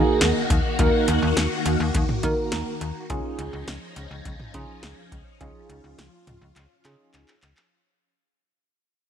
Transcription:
0.00 3.06 D#3 medium
0.00 0.41 A#3 medium
0.00 3.06 A#3 medium
0.00 0.41 D#4 medium
0.00 0.41 F#4 medium
0.00 3.06 F#4 medium
0.00 0.41 G#4 loud
0.21 0.32 D#2 loud
0.21 snare loud
0.21 closed hi-hat medium
0.50 0.61 D#2 medium
0.50 kick loud
0.50 closed hi-hat medium
0.79 0.90 D#2 loud
0.79 1.44 A#3 medium
0.79 1.44 D#4 medium
0.79 1.44 F#4 medium
0.79 1.44 A#4 loud
0.79 kick loud
0.79 closed hi-hat medium
1.08 1.19 D#2 loud
1.08 closed hi-hat medium
1.22 1.33 D#2 loud
1.37 1.47 D#2 loud
1.37 snare loud
1.37 closed hi-hat medium
1.66 1.76 D#2 loud
1.66 closed hi-hat medium
1.80 1.91 D#2 loud
1.94 2.05 D#2 loud
1.94 kick loud
1.94 closed hi-hat medium
2.09 mid tom medium
2.23 2.34 D#3 loud
2.23 2.72 A#3 medium
2.23 2.72 D#4 medium
2.23 2.72 F#4 medium
2.23 2.72 A#4 loud
2.23 kick medium
2.23 closed hi-hat medium
2.52 2.63 D#2 loud
2.52 3.06 A#5 medium
2.52 snare loud
2.52 closed hi-hat medium
2.81 2.92 D#2 medium
2.81 closed hi-hat medium
3.10 3.21 C#2 loud
3.10 7.67 F3 medium
3.10 7.67 C#4 medium
3.10 3.74 C#4 medium
3.10 5.38 D#4 medium
3.10 3.75 D#4 medium
3.10 3.74 F4 medium
3.10 3.74 G#4 loud
3.10 kick loud
3.10 closed hi-hat medium
3.39 3.49 C#2 loud
3.39 closed hi-hat medium
3.53 3.64 C#2 loud
3.67 3.78 C#2 loud
3.67 snare loud
3.67 closed hi-hat medium
3.96 4.07 C#2 loud
3.96 closed hi-hat medium
4.11 4.21 C#2 loud
4.25 4.36 C#2 loud
4.25 kick loud
4.25 closed hi-hat medium
4.40 mid tom medium
4.54 4.65 C#3 loud
4.54 5.02 C#4 medium
4.54 5.03 D#4 medium
4.54 5.03 F4 medium
4.54 5.03 G#4 loud
4.54 kick medium
4.54 closed hi-hat medium
4.83 4.94 C#2 loud
4.83 snare loud
4.83 closed hi-hat medium
5.12 5.22 C#2 medium
5.12 kick medium
5.12 closed hi-hat medium
5.41 5.51 C#2 loud
5.41 6.05 C#4 medium
5.41 6.05 D#4 medium
5.41 6.05 F4 medium
5.41 7.69 F4 medium
5.41 6.05 G#4 loud
5.41 kick loud
5.41 closed hi-hat medium
5.69 5.80 C#2 loud
5.69 closed hi-hat medium
5.84 5.95 C#2 loud
5.98 6.09 C#2 loud
5.98 snare loud
5.98 closed hi-hat medium
6.27 6.38 C#2 medium
6.27 closed hi-hat medium
6.27 mid tom loud
6.41 6.52 C#2 loud
6.56 6.67 C#2 loud
6.56 clap medium
6.56 closed hi-hat medium
6.85 6.96 C#3 loud
6.85 7.33 C#4 medium
6.85 7.33 D#4 medium
6.85 7.33 F4 medium
6.85 7.33 G#4 loud
6.85 clap medium
6.85 closed hi-hat medium
7.14 7.25 C#2 loud
7.14 clap loud
7.14 closed hi-hat medium
7.28 clap medium
7.42 7.53 C#2 medium
7.42 clap loud
7.42 closed hi-hat medium
7.57 clap loud

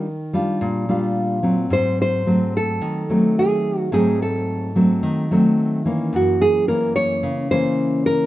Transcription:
0.00 0.58 D#3 medium
0.00 0.85 A#4 medium
0.33 0.84 G3 medium
0.33 0.84 D4 medium
0.33 0.85 F4 medium
0.61 1.69 A#2 medium
0.89 1.39 G3 medium
0.89 1.39 D4 medium
0.89 1.40 F4 medium
1.43 2.22 F#3 medium
1.43 2.22 C4 medium
1.70 2.78 G#2 medium
1.70 1.98 C5 loud
2.02 2.56 C5 loud
2.26 3.05 F#3 medium
2.26 3.05 A3 soft
2.26 3.05 C4 medium
2.57 3.39 A4 medium
2.81 3.89 D#3 medium
3.10 3.88 F#3 medium
3.10 3.88 A3 medium
3.10 3.88 C4 medium
3.39 3.89 G#4 medium
3.92 5.00 G#2 medium
3.92 4.70 F#3 medium
3.92 4.70 A3 soft
3.92 4.71 C4 medium
3.92 4.21 G#4 medium
4.22 5.82 A4 medium
4.75 5.26 F#3 medium
4.75 5.26 A3 medium
4.75 5.26 C4 medium
5.03 6.10 D#3 medium
5.31 5.81 F#3 medium
5.31 5.82 A3 medium
5.31 5.82 C4 medium
5.85 6.63 E3 medium
5.85 6.64 A#3 medium
5.85 6.64 C#4 medium
6.13 7.20 F#2 medium
6.13 6.43 F#4 medium
6.42 6.67 G#4 loud
6.68 7.46 E3 medium
6.68 7.46 A#3 soft
6.68 7.47 C#4 medium
6.68 6.95 A#4 medium
6.96 7.51 C#5 loud
7.23 8.26 C#3 medium
7.51 8.26 E3 medium
7.51 8.26 A#3 medium
7.51 8.26 C#4 medium
7.51 8.06 C5 medium
8.06 8.26 A#4 medium

